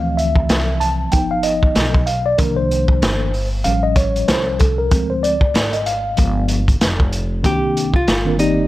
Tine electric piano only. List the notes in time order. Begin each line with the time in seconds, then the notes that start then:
Already playing: E3 F3 C4 F5
0.17 E5
0.80 A5
1.12 F3 B3 D#4 G5
1.31 F5
1.43 D#5
2.06 F5
2.26 D5
2.38 D#3 F3 A#3 D4 A#4
2.56 C5
3.64 F3 G3 C#4 F5
3.83 D#5
3.96 C#5
4.28 C5
4.59 A4
4.78 A#4
4.91 F3 G#3 C4
5.10 C5
5.23 D5
5.73 D#5
5.86 F5
6.17 F3 G#3 B3
7.43 D#3 A#3 C4 D4 F#4
7.51 G4
8.25 D#3 A#3 C4 D4 A#4
8.37 D#3 A#3 C4 G4 D5